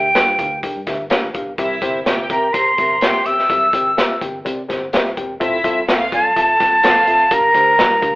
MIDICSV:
0, 0, Header, 1, 7, 480
1, 0, Start_track
1, 0, Tempo, 476948
1, 1594, Time_signature, 4, 2, 24, 8
1, 8205, End_track
2, 0, Start_track
2, 0, Title_t, "Flute"
2, 0, Program_c, 0, 73
2, 0, Note_on_c, 0, 79, 91
2, 597, Note_off_c, 0, 79, 0
2, 2325, Note_on_c, 0, 82, 77
2, 2548, Note_on_c, 0, 84, 84
2, 2563, Note_off_c, 0, 82, 0
2, 3281, Note_on_c, 0, 88, 98
2, 3296, Note_off_c, 0, 84, 0
2, 4238, Note_off_c, 0, 88, 0
2, 6175, Note_on_c, 0, 81, 102
2, 7383, Note_on_c, 0, 82, 127
2, 7398, Note_off_c, 0, 81, 0
2, 8205, Note_off_c, 0, 82, 0
2, 8205, End_track
3, 0, Start_track
3, 0, Title_t, "Violin section"
3, 0, Program_c, 1, 48
3, 1595, Note_on_c, 1, 76, 102
3, 1596, Note_on_c, 1, 64, 103
3, 2046, Note_off_c, 1, 64, 0
3, 2046, Note_off_c, 1, 76, 0
3, 2066, Note_on_c, 1, 79, 104
3, 2070, Note_on_c, 1, 67, 91
3, 2521, Note_off_c, 1, 79, 0
3, 2523, Note_off_c, 1, 67, 0
3, 2555, Note_on_c, 1, 82, 85
3, 2557, Note_on_c, 1, 70, 82
3, 2747, Note_off_c, 1, 82, 0
3, 2748, Note_off_c, 1, 70, 0
3, 2796, Note_on_c, 1, 82, 79
3, 2797, Note_on_c, 1, 70, 74
3, 2987, Note_off_c, 1, 82, 0
3, 2988, Note_off_c, 1, 70, 0
3, 3036, Note_on_c, 1, 67, 95
3, 3037, Note_on_c, 1, 79, 96
3, 3374, Note_off_c, 1, 67, 0
3, 3374, Note_off_c, 1, 79, 0
3, 5451, Note_on_c, 1, 76, 114
3, 5452, Note_on_c, 1, 64, 98
3, 5896, Note_off_c, 1, 64, 0
3, 5896, Note_off_c, 1, 76, 0
3, 5915, Note_on_c, 1, 65, 94
3, 5918, Note_on_c, 1, 77, 114
3, 6367, Note_off_c, 1, 65, 0
3, 6369, Note_off_c, 1, 77, 0
3, 6398, Note_on_c, 1, 69, 82
3, 6400, Note_on_c, 1, 81, 83
3, 6589, Note_off_c, 1, 69, 0
3, 6591, Note_off_c, 1, 81, 0
3, 6648, Note_on_c, 1, 81, 85
3, 6649, Note_on_c, 1, 69, 74
3, 6836, Note_off_c, 1, 69, 0
3, 6836, Note_off_c, 1, 81, 0
3, 6881, Note_on_c, 1, 65, 103
3, 6883, Note_on_c, 1, 77, 104
3, 7217, Note_off_c, 1, 65, 0
3, 7218, Note_off_c, 1, 77, 0
3, 8205, End_track
4, 0, Start_track
4, 0, Title_t, "Vibraphone"
4, 0, Program_c, 2, 11
4, 0, Note_on_c, 2, 67, 65
4, 594, Note_off_c, 2, 67, 0
4, 2327, Note_on_c, 2, 70, 65
4, 2544, Note_off_c, 2, 70, 0
4, 2558, Note_on_c, 2, 72, 65
4, 3272, Note_on_c, 2, 76, 72
4, 3276, Note_off_c, 2, 72, 0
4, 4234, Note_off_c, 2, 76, 0
4, 6159, Note_on_c, 2, 69, 74
4, 7318, Note_off_c, 2, 69, 0
4, 7354, Note_on_c, 2, 70, 84
4, 8205, Note_off_c, 2, 70, 0
4, 8205, End_track
5, 0, Start_track
5, 0, Title_t, "Tine electric piano"
5, 0, Program_c, 3, 4
5, 0, Note_on_c, 3, 43, 61
5, 149, Note_on_c, 3, 70, 70
5, 151, Note_on_c, 3, 62, 76
5, 153, Note_on_c, 3, 67, 63
5, 153, Note_on_c, 3, 77, 85
5, 320, Note_off_c, 3, 70, 0
5, 321, Note_off_c, 3, 62, 0
5, 322, Note_off_c, 3, 67, 0
5, 322, Note_off_c, 3, 77, 0
5, 346, Note_off_c, 3, 43, 0
5, 389, Note_on_c, 3, 67, 69
5, 391, Note_on_c, 3, 77, 83
5, 393, Note_on_c, 3, 62, 80
5, 393, Note_on_c, 3, 70, 74
5, 560, Note_off_c, 3, 67, 0
5, 561, Note_off_c, 3, 77, 0
5, 562, Note_off_c, 3, 62, 0
5, 562, Note_off_c, 3, 70, 0
5, 637, Note_on_c, 3, 62, 86
5, 638, Note_on_c, 3, 67, 81
5, 639, Note_on_c, 3, 70, 83
5, 639, Note_on_c, 3, 79, 97
5, 804, Note_off_c, 3, 62, 0
5, 804, Note_off_c, 3, 67, 0
5, 805, Note_off_c, 3, 70, 0
5, 805, Note_off_c, 3, 79, 0
5, 873, Note_on_c, 3, 76, 100
5, 875, Note_on_c, 3, 62, 90
5, 875, Note_on_c, 3, 67, 78
5, 877, Note_on_c, 3, 70, 81
5, 1042, Note_off_c, 3, 76, 0
5, 1043, Note_off_c, 3, 62, 0
5, 1043, Note_off_c, 3, 67, 0
5, 1044, Note_off_c, 3, 70, 0
5, 1110, Note_on_c, 3, 62, 101
5, 1110, Note_on_c, 3, 67, 95
5, 1111, Note_on_c, 3, 70, 100
5, 1111, Note_on_c, 3, 77, 114
5, 1280, Note_off_c, 3, 62, 0
5, 1281, Note_off_c, 3, 67, 0
5, 1281, Note_off_c, 3, 70, 0
5, 1281, Note_off_c, 3, 77, 0
5, 1350, Note_on_c, 3, 62, 83
5, 1353, Note_on_c, 3, 70, 75
5, 1356, Note_on_c, 3, 67, 82
5, 1358, Note_on_c, 3, 77, 93
5, 1520, Note_off_c, 3, 62, 0
5, 1522, Note_off_c, 3, 70, 0
5, 1523, Note_off_c, 3, 67, 0
5, 1524, Note_off_c, 3, 77, 0
5, 1597, Note_on_c, 3, 48, 74
5, 1597, Note_on_c, 3, 60, 110
5, 1598, Note_on_c, 3, 70, 107
5, 1600, Note_on_c, 3, 67, 109
5, 1601, Note_on_c, 3, 76, 127
5, 1764, Note_off_c, 3, 60, 0
5, 1764, Note_off_c, 3, 70, 0
5, 1765, Note_off_c, 3, 67, 0
5, 1766, Note_off_c, 3, 76, 0
5, 1834, Note_on_c, 3, 70, 107
5, 1835, Note_on_c, 3, 67, 109
5, 1835, Note_on_c, 3, 72, 127
5, 1837, Note_on_c, 3, 60, 117
5, 2003, Note_off_c, 3, 67, 0
5, 2003, Note_off_c, 3, 70, 0
5, 2003, Note_off_c, 3, 72, 0
5, 2004, Note_off_c, 3, 60, 0
5, 2076, Note_on_c, 3, 60, 89
5, 2077, Note_on_c, 3, 67, 82
5, 2078, Note_on_c, 3, 76, 95
5, 2080, Note_on_c, 3, 70, 80
5, 2243, Note_off_c, 3, 60, 0
5, 2244, Note_off_c, 3, 67, 0
5, 2244, Note_off_c, 3, 76, 0
5, 2246, Note_off_c, 3, 70, 0
5, 2276, Note_off_c, 3, 48, 0
5, 2320, Note_on_c, 3, 60, 63
5, 2321, Note_on_c, 3, 67, 62
5, 2321, Note_on_c, 3, 70, 58
5, 2322, Note_on_c, 3, 76, 74
5, 2486, Note_off_c, 3, 60, 0
5, 2486, Note_off_c, 3, 67, 0
5, 2486, Note_off_c, 3, 70, 0
5, 2487, Note_off_c, 3, 76, 0
5, 2563, Note_on_c, 3, 60, 73
5, 2565, Note_on_c, 3, 67, 69
5, 2565, Note_on_c, 3, 70, 69
5, 2565, Note_on_c, 3, 72, 84
5, 2727, Note_off_c, 3, 60, 0
5, 2728, Note_off_c, 3, 67, 0
5, 2728, Note_off_c, 3, 70, 0
5, 2728, Note_off_c, 3, 72, 0
5, 2798, Note_on_c, 3, 67, 70
5, 2801, Note_on_c, 3, 60, 71
5, 2801, Note_on_c, 3, 70, 67
5, 2801, Note_on_c, 3, 76, 78
5, 2965, Note_off_c, 3, 67, 0
5, 2966, Note_off_c, 3, 60, 0
5, 2966, Note_off_c, 3, 70, 0
5, 2966, Note_off_c, 3, 76, 0
5, 3037, Note_on_c, 3, 60, 95
5, 3040, Note_on_c, 3, 70, 85
5, 3043, Note_on_c, 3, 67, 81
5, 3043, Note_on_c, 3, 76, 100
5, 3205, Note_off_c, 3, 60, 0
5, 3206, Note_off_c, 3, 70, 0
5, 3207, Note_off_c, 3, 67, 0
5, 3207, Note_off_c, 3, 76, 0
5, 3279, Note_on_c, 3, 67, 65
5, 3279, Note_on_c, 3, 70, 68
5, 3281, Note_on_c, 3, 60, 73
5, 3284, Note_on_c, 3, 76, 77
5, 3445, Note_off_c, 3, 67, 0
5, 3446, Note_off_c, 3, 70, 0
5, 3447, Note_off_c, 3, 60, 0
5, 3448, Note_off_c, 3, 76, 0
5, 3521, Note_on_c, 3, 48, 66
5, 3522, Note_on_c, 3, 67, 90
5, 3523, Note_on_c, 3, 60, 98
5, 3524, Note_on_c, 3, 70, 84
5, 3524, Note_on_c, 3, 76, 107
5, 3687, Note_off_c, 3, 60, 0
5, 3687, Note_off_c, 3, 67, 0
5, 3688, Note_off_c, 3, 70, 0
5, 3688, Note_off_c, 3, 76, 0
5, 3761, Note_on_c, 3, 60, 99
5, 3761, Note_on_c, 3, 70, 86
5, 3764, Note_on_c, 3, 67, 90
5, 3767, Note_on_c, 3, 79, 108
5, 3926, Note_off_c, 3, 70, 0
5, 3927, Note_off_c, 3, 60, 0
5, 3928, Note_off_c, 3, 67, 0
5, 3930, Note_off_c, 3, 79, 0
5, 3994, Note_on_c, 3, 67, 85
5, 3997, Note_on_c, 3, 60, 88
5, 3999, Note_on_c, 3, 70, 75
5, 4000, Note_on_c, 3, 76, 97
5, 4163, Note_off_c, 3, 67, 0
5, 4164, Note_off_c, 3, 60, 0
5, 4165, Note_off_c, 3, 70, 0
5, 4166, Note_off_c, 3, 76, 0
5, 4198, Note_off_c, 3, 48, 0
5, 4241, Note_on_c, 3, 67, 72
5, 4241, Note_on_c, 3, 79, 89
5, 4242, Note_on_c, 3, 60, 74
5, 4243, Note_on_c, 3, 70, 69
5, 4407, Note_off_c, 3, 67, 0
5, 4407, Note_off_c, 3, 79, 0
5, 4408, Note_off_c, 3, 60, 0
5, 4408, Note_off_c, 3, 70, 0
5, 4477, Note_on_c, 3, 60, 95
5, 4478, Note_on_c, 3, 67, 81
5, 4478, Note_on_c, 3, 70, 84
5, 4481, Note_on_c, 3, 74, 96
5, 4645, Note_off_c, 3, 60, 0
5, 4645, Note_off_c, 3, 67, 0
5, 4646, Note_off_c, 3, 70, 0
5, 4647, Note_off_c, 3, 74, 0
5, 4716, Note_on_c, 3, 70, 82
5, 4717, Note_on_c, 3, 60, 82
5, 4717, Note_on_c, 3, 67, 83
5, 4720, Note_on_c, 3, 72, 99
5, 4884, Note_off_c, 3, 70, 0
5, 4885, Note_off_c, 3, 60, 0
5, 4885, Note_off_c, 3, 67, 0
5, 4886, Note_off_c, 3, 72, 0
5, 4963, Note_on_c, 3, 60, 100
5, 4963, Note_on_c, 3, 70, 101
5, 4964, Note_on_c, 3, 67, 109
5, 4964, Note_on_c, 3, 76, 117
5, 5128, Note_off_c, 3, 60, 0
5, 5128, Note_off_c, 3, 67, 0
5, 5128, Note_off_c, 3, 70, 0
5, 5128, Note_off_c, 3, 76, 0
5, 5202, Note_on_c, 3, 60, 86
5, 5204, Note_on_c, 3, 67, 77
5, 5204, Note_on_c, 3, 70, 84
5, 5206, Note_on_c, 3, 79, 94
5, 5368, Note_off_c, 3, 60, 0
5, 5369, Note_off_c, 3, 67, 0
5, 5369, Note_off_c, 3, 70, 0
5, 5370, Note_off_c, 3, 79, 0
5, 5436, Note_on_c, 3, 60, 120
5, 5436, Note_on_c, 3, 69, 114
5, 5437, Note_on_c, 3, 76, 127
5, 5438, Note_on_c, 3, 65, 109
5, 5605, Note_off_c, 3, 60, 0
5, 5605, Note_off_c, 3, 69, 0
5, 5605, Note_off_c, 3, 76, 0
5, 5606, Note_off_c, 3, 65, 0
5, 5677, Note_on_c, 3, 60, 115
5, 5678, Note_on_c, 3, 65, 110
5, 5678, Note_on_c, 3, 76, 127
5, 5680, Note_on_c, 3, 69, 115
5, 5845, Note_off_c, 3, 60, 0
5, 5846, Note_off_c, 3, 65, 0
5, 5846, Note_off_c, 3, 76, 0
5, 5847, Note_off_c, 3, 69, 0
5, 5920, Note_on_c, 3, 65, 85
5, 5923, Note_on_c, 3, 60, 90
5, 5923, Note_on_c, 3, 69, 82
5, 5923, Note_on_c, 3, 76, 100
5, 6087, Note_off_c, 3, 65, 0
5, 6088, Note_off_c, 3, 60, 0
5, 6088, Note_off_c, 3, 69, 0
5, 6088, Note_off_c, 3, 76, 0
5, 6163, Note_on_c, 3, 60, 68
5, 6166, Note_on_c, 3, 69, 62
5, 6166, Note_on_c, 3, 74, 83
5, 6167, Note_on_c, 3, 65, 62
5, 6329, Note_off_c, 3, 60, 0
5, 6330, Note_off_c, 3, 65, 0
5, 6330, Note_off_c, 3, 69, 0
5, 6330, Note_off_c, 3, 74, 0
5, 6400, Note_on_c, 3, 65, 71
5, 6404, Note_on_c, 3, 69, 71
5, 6404, Note_on_c, 3, 76, 88
5, 6405, Note_on_c, 3, 60, 74
5, 6567, Note_off_c, 3, 65, 0
5, 6569, Note_off_c, 3, 60, 0
5, 6569, Note_off_c, 3, 69, 0
5, 6569, Note_off_c, 3, 76, 0
5, 6636, Note_on_c, 3, 60, 71
5, 6637, Note_on_c, 3, 69, 70
5, 6638, Note_on_c, 3, 65, 67
5, 6639, Note_on_c, 3, 79, 81
5, 6805, Note_off_c, 3, 60, 0
5, 6805, Note_off_c, 3, 69, 0
5, 6806, Note_off_c, 3, 65, 0
5, 6806, Note_off_c, 3, 79, 0
5, 6880, Note_on_c, 3, 65, 105
5, 6881, Note_on_c, 3, 60, 106
5, 6881, Note_on_c, 3, 77, 125
5, 6882, Note_on_c, 3, 69, 107
5, 7047, Note_off_c, 3, 60, 0
5, 7047, Note_off_c, 3, 65, 0
5, 7047, Note_off_c, 3, 77, 0
5, 7048, Note_off_c, 3, 69, 0
5, 7117, Note_on_c, 3, 60, 86
5, 7118, Note_on_c, 3, 69, 75
5, 7119, Note_on_c, 3, 76, 98
5, 7121, Note_on_c, 3, 65, 73
5, 7285, Note_off_c, 3, 60, 0
5, 7286, Note_off_c, 3, 69, 0
5, 7286, Note_off_c, 3, 76, 0
5, 7287, Note_off_c, 3, 65, 0
5, 7359, Note_on_c, 3, 70, 94
5, 7360, Note_on_c, 3, 43, 67
5, 7361, Note_on_c, 3, 67, 88
5, 7362, Note_on_c, 3, 77, 110
5, 7363, Note_on_c, 3, 62, 103
5, 7526, Note_off_c, 3, 70, 0
5, 7527, Note_off_c, 3, 67, 0
5, 7528, Note_off_c, 3, 62, 0
5, 7528, Note_off_c, 3, 77, 0
5, 7593, Note_on_c, 3, 62, 99
5, 7594, Note_on_c, 3, 67, 97
5, 7595, Note_on_c, 3, 70, 92
5, 7595, Note_on_c, 3, 72, 112
5, 7763, Note_off_c, 3, 62, 0
5, 7764, Note_off_c, 3, 67, 0
5, 7764, Note_off_c, 3, 70, 0
5, 7764, Note_off_c, 3, 72, 0
5, 7834, Note_on_c, 3, 62, 72
5, 7836, Note_on_c, 3, 67, 72
5, 7836, Note_on_c, 3, 77, 81
5, 7840, Note_on_c, 3, 70, 66
5, 8003, Note_off_c, 3, 62, 0
5, 8004, Note_off_c, 3, 67, 0
5, 8004, Note_off_c, 3, 77, 0
5, 8007, Note_off_c, 3, 70, 0
5, 8038, Note_off_c, 3, 43, 0
5, 8067, Note_on_c, 3, 62, 88
5, 8069, Note_on_c, 3, 67, 72
5, 8069, Note_on_c, 3, 77, 83
5, 8070, Note_on_c, 3, 70, 74
5, 8205, Note_off_c, 3, 62, 0
5, 8205, Note_off_c, 3, 67, 0
5, 8205, Note_off_c, 3, 70, 0
5, 8205, Note_off_c, 3, 77, 0
5, 8205, End_track
6, 0, Start_track
6, 0, Title_t, "Fingered electric bass"
6, 0, Program_c, 4, 33
6, 0, Note_on_c, 4, 38, 86
6, 114, Note_off_c, 4, 38, 0
6, 159, Note_on_c, 4, 43, 92
6, 360, Note_off_c, 4, 43, 0
6, 394, Note_on_c, 4, 38, 86
6, 597, Note_off_c, 4, 38, 0
6, 762, Note_on_c, 4, 43, 85
6, 860, Note_off_c, 4, 43, 0
6, 881, Note_on_c, 4, 38, 91
6, 979, Note_off_c, 4, 38, 0
6, 997, Note_on_c, 4, 31, 91
6, 1097, Note_off_c, 4, 31, 0
6, 1238, Note_on_c, 4, 33, 88
6, 1338, Note_off_c, 4, 33, 0
6, 1357, Note_on_c, 4, 34, 88
6, 1458, Note_off_c, 4, 34, 0
6, 1476, Note_on_c, 4, 35, 85
6, 1577, Note_off_c, 4, 35, 0
6, 1594, Note_on_c, 4, 36, 96
6, 1798, Note_off_c, 4, 36, 0
6, 1830, Note_on_c, 4, 31, 89
6, 2035, Note_off_c, 4, 31, 0
6, 2081, Note_on_c, 4, 31, 82
6, 2282, Note_off_c, 4, 31, 0
6, 2317, Note_on_c, 4, 48, 100
6, 2519, Note_off_c, 4, 48, 0
6, 2559, Note_on_c, 4, 48, 102
6, 2760, Note_off_c, 4, 48, 0
6, 2802, Note_on_c, 4, 31, 90
6, 3002, Note_off_c, 4, 31, 0
6, 3041, Note_on_c, 4, 34, 101
6, 3242, Note_off_c, 4, 34, 0
6, 3278, Note_on_c, 4, 35, 90
6, 3480, Note_off_c, 4, 35, 0
6, 3522, Note_on_c, 4, 36, 111
6, 3722, Note_off_c, 4, 36, 0
6, 3758, Note_on_c, 4, 31, 82
6, 3960, Note_off_c, 4, 31, 0
6, 3997, Note_on_c, 4, 48, 94
6, 4200, Note_off_c, 4, 48, 0
6, 4241, Note_on_c, 4, 31, 96
6, 4442, Note_off_c, 4, 31, 0
6, 4486, Note_on_c, 4, 48, 89
6, 4685, Note_off_c, 4, 48, 0
6, 4729, Note_on_c, 4, 31, 87
6, 4927, Note_off_c, 4, 31, 0
6, 4968, Note_on_c, 4, 36, 92
6, 5167, Note_off_c, 4, 36, 0
6, 5208, Note_on_c, 4, 28, 91
6, 5407, Note_off_c, 4, 28, 0
6, 5443, Note_on_c, 4, 29, 107
6, 5643, Note_off_c, 4, 29, 0
6, 5681, Note_on_c, 4, 36, 87
6, 5882, Note_off_c, 4, 36, 0
6, 5923, Note_on_c, 4, 41, 95
6, 6124, Note_off_c, 4, 41, 0
6, 6164, Note_on_c, 4, 36, 98
6, 6364, Note_off_c, 4, 36, 0
6, 6406, Note_on_c, 4, 41, 95
6, 6606, Note_off_c, 4, 41, 0
6, 6647, Note_on_c, 4, 36, 85
6, 6846, Note_off_c, 4, 36, 0
6, 6877, Note_on_c, 4, 29, 91
6, 7080, Note_off_c, 4, 29, 0
6, 7118, Note_on_c, 4, 30, 90
6, 7321, Note_off_c, 4, 30, 0
6, 7359, Note_on_c, 4, 31, 99
6, 7561, Note_off_c, 4, 31, 0
6, 7597, Note_on_c, 4, 38, 84
6, 7800, Note_off_c, 4, 38, 0
6, 7835, Note_on_c, 4, 43, 88
6, 8039, Note_off_c, 4, 43, 0
6, 8075, Note_on_c, 4, 38, 99
6, 8205, Note_off_c, 4, 38, 0
6, 8205, End_track
7, 0, Start_track
7, 0, Title_t, "Drums"
7, 153, Note_on_c, 9, 38, 109
7, 157, Note_on_c, 9, 42, 88
7, 254, Note_off_c, 9, 38, 0
7, 257, Note_off_c, 9, 42, 0
7, 389, Note_on_c, 9, 42, 67
7, 391, Note_on_c, 9, 36, 95
7, 490, Note_off_c, 9, 42, 0
7, 492, Note_off_c, 9, 36, 0
7, 634, Note_on_c, 9, 42, 86
7, 635, Note_on_c, 9, 36, 82
7, 734, Note_off_c, 9, 42, 0
7, 736, Note_off_c, 9, 36, 0
7, 873, Note_on_c, 9, 42, 72
7, 877, Note_on_c, 9, 36, 94
7, 881, Note_on_c, 9, 38, 31
7, 974, Note_off_c, 9, 42, 0
7, 978, Note_off_c, 9, 36, 0
7, 981, Note_off_c, 9, 38, 0
7, 1107, Note_on_c, 9, 42, 84
7, 1118, Note_on_c, 9, 38, 117
7, 1207, Note_off_c, 9, 42, 0
7, 1219, Note_off_c, 9, 38, 0
7, 1352, Note_on_c, 9, 42, 62
7, 1356, Note_on_c, 9, 36, 90
7, 1453, Note_off_c, 9, 42, 0
7, 1456, Note_off_c, 9, 36, 0
7, 1592, Note_on_c, 9, 42, 88
7, 1593, Note_on_c, 9, 36, 111
7, 1692, Note_off_c, 9, 42, 0
7, 1694, Note_off_c, 9, 36, 0
7, 1830, Note_on_c, 9, 36, 89
7, 1833, Note_on_c, 9, 42, 85
7, 1930, Note_off_c, 9, 36, 0
7, 1933, Note_off_c, 9, 42, 0
7, 2076, Note_on_c, 9, 38, 99
7, 2079, Note_on_c, 9, 42, 89
7, 2177, Note_off_c, 9, 38, 0
7, 2180, Note_off_c, 9, 42, 0
7, 2314, Note_on_c, 9, 36, 101
7, 2316, Note_on_c, 9, 42, 73
7, 2415, Note_off_c, 9, 36, 0
7, 2417, Note_off_c, 9, 42, 0
7, 2557, Note_on_c, 9, 42, 83
7, 2558, Note_on_c, 9, 36, 81
7, 2657, Note_off_c, 9, 42, 0
7, 2659, Note_off_c, 9, 36, 0
7, 2797, Note_on_c, 9, 42, 68
7, 2801, Note_on_c, 9, 36, 82
7, 2898, Note_off_c, 9, 42, 0
7, 2902, Note_off_c, 9, 36, 0
7, 3032, Note_on_c, 9, 42, 86
7, 3043, Note_on_c, 9, 38, 125
7, 3132, Note_off_c, 9, 42, 0
7, 3144, Note_off_c, 9, 38, 0
7, 3277, Note_on_c, 9, 42, 65
7, 3378, Note_off_c, 9, 42, 0
7, 3411, Note_on_c, 9, 38, 36
7, 3511, Note_off_c, 9, 38, 0
7, 3519, Note_on_c, 9, 36, 107
7, 3521, Note_on_c, 9, 42, 80
7, 3620, Note_off_c, 9, 36, 0
7, 3622, Note_off_c, 9, 42, 0
7, 3756, Note_on_c, 9, 36, 93
7, 3763, Note_on_c, 9, 42, 82
7, 3857, Note_off_c, 9, 36, 0
7, 3863, Note_off_c, 9, 42, 0
7, 4007, Note_on_c, 9, 38, 105
7, 4010, Note_on_c, 9, 42, 91
7, 4107, Note_off_c, 9, 38, 0
7, 4111, Note_off_c, 9, 42, 0
7, 4242, Note_on_c, 9, 36, 97
7, 4246, Note_on_c, 9, 42, 73
7, 4342, Note_off_c, 9, 36, 0
7, 4347, Note_off_c, 9, 42, 0
7, 4487, Note_on_c, 9, 36, 82
7, 4487, Note_on_c, 9, 42, 86
7, 4587, Note_off_c, 9, 36, 0
7, 4587, Note_off_c, 9, 42, 0
7, 4729, Note_on_c, 9, 36, 79
7, 4729, Note_on_c, 9, 42, 72
7, 4737, Note_on_c, 9, 38, 31
7, 4830, Note_off_c, 9, 36, 0
7, 4830, Note_off_c, 9, 42, 0
7, 4838, Note_off_c, 9, 38, 0
7, 4961, Note_on_c, 9, 42, 79
7, 4972, Note_on_c, 9, 38, 116
7, 5062, Note_off_c, 9, 42, 0
7, 5073, Note_off_c, 9, 38, 0
7, 5204, Note_on_c, 9, 42, 64
7, 5206, Note_on_c, 9, 36, 87
7, 5305, Note_off_c, 9, 42, 0
7, 5307, Note_off_c, 9, 36, 0
7, 5444, Note_on_c, 9, 36, 112
7, 5446, Note_on_c, 9, 42, 78
7, 5545, Note_off_c, 9, 36, 0
7, 5546, Note_off_c, 9, 42, 0
7, 5679, Note_on_c, 9, 36, 91
7, 5685, Note_on_c, 9, 42, 86
7, 5780, Note_off_c, 9, 36, 0
7, 5785, Note_off_c, 9, 42, 0
7, 5923, Note_on_c, 9, 38, 109
7, 5927, Note_on_c, 9, 42, 94
7, 6024, Note_off_c, 9, 38, 0
7, 6027, Note_off_c, 9, 42, 0
7, 6162, Note_on_c, 9, 36, 102
7, 6167, Note_on_c, 9, 42, 72
7, 6263, Note_off_c, 9, 36, 0
7, 6267, Note_off_c, 9, 42, 0
7, 6405, Note_on_c, 9, 36, 83
7, 6406, Note_on_c, 9, 42, 92
7, 6506, Note_off_c, 9, 36, 0
7, 6506, Note_off_c, 9, 42, 0
7, 6643, Note_on_c, 9, 42, 74
7, 6646, Note_on_c, 9, 36, 91
7, 6650, Note_on_c, 9, 38, 33
7, 6743, Note_off_c, 9, 42, 0
7, 6747, Note_off_c, 9, 36, 0
7, 6751, Note_off_c, 9, 38, 0
7, 6878, Note_on_c, 9, 42, 87
7, 6889, Note_on_c, 9, 38, 127
7, 6978, Note_off_c, 9, 42, 0
7, 6989, Note_off_c, 9, 38, 0
7, 7118, Note_on_c, 9, 42, 60
7, 7219, Note_off_c, 9, 42, 0
7, 7356, Note_on_c, 9, 42, 91
7, 7359, Note_on_c, 9, 36, 116
7, 7457, Note_off_c, 9, 42, 0
7, 7459, Note_off_c, 9, 36, 0
7, 7593, Note_on_c, 9, 36, 82
7, 7600, Note_on_c, 9, 42, 78
7, 7694, Note_off_c, 9, 36, 0
7, 7700, Note_off_c, 9, 42, 0
7, 7839, Note_on_c, 9, 38, 109
7, 7842, Note_on_c, 9, 42, 89
7, 7940, Note_off_c, 9, 38, 0
7, 7943, Note_off_c, 9, 42, 0
7, 8076, Note_on_c, 9, 36, 100
7, 8078, Note_on_c, 9, 42, 71
7, 8176, Note_off_c, 9, 36, 0
7, 8178, Note_off_c, 9, 42, 0
7, 8205, End_track
0, 0, End_of_file